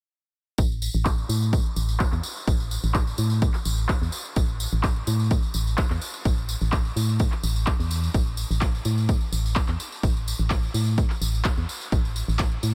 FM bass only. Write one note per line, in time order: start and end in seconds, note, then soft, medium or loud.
0.58 0.89 A1 loud
0.94 1.24 A1 loud
1.29 1.59 A2 medium
1.76 2.07 A1 medium
2.13 2.21 E2 medium
2.48 2.78 A1 loud
2.84 3.13 A1 loud
3.18 3.49 A2 medium
3.66 3.96 A1 medium
4.02 4.10 E2 medium
4.36 4.67 A1 medium
4.73 5.02 A1 loud
5.07 5.38 A2 medium
5.55 5.85 A1 medium
5.91 5.99 E2 medium
6.25 6.56 A1 loud
6.61 6.91 A1 loud
6.96 7.26 A2 medium
7.43 7.74 A1 loud
7.80 8.09 E2 loud
8.14 8.45 A1 loud
8.51 8.80 A1 medium
8.85 9.15 A2 medium
9.32 9.63 A1 medium
9.69 9.76 E2 medium
10.03 10.34 A1 loud
10.39 10.69 A1 loud
10.74 11.04 A2 medium
11.21 11.52 A1 medium
11.58 11.65 E2 medium
11.92 12.22 A1 loud
12.28 12.58 A1 loud
12.63 12.74 A2 medium